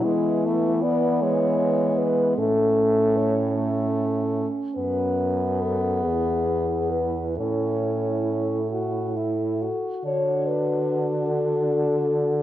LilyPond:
<<
  \new Staff \with { instrumentName = "French horn" } { \time 6/8 \key a \major \tempo 4. = 49 e'4 d''8 cis''4 b'8 | a'4 cis''8 r4. | b'4 a'8 gis'4 b'8 | a'4. a'4. |
\key d \major cis''8 b'4 a'4. | }
  \new Staff \with { instrumentName = "French horn" } { \time 6/8 \key a \major b2. | cis'2.~ | cis'4 r8 e'4. | e'2~ e'8 r8 |
\key d \major fis'2. | }
  \new Staff \with { instrumentName = "French horn" } { \time 6/8 \key a \major gis8 a8 b8 gis4. | a4. a4 r8 | b2. | cis'4. fis'8 e'8 fis'8 |
\key d \major d'2. | }
  \new Staff \with { instrumentName = "French horn" } { \clef bass \time 6/8 \key a \major e2. | a,2~ a,8 r8 | fis,4. e,4. | a,2~ a,8 r8 |
\key d \major d2. | }
>>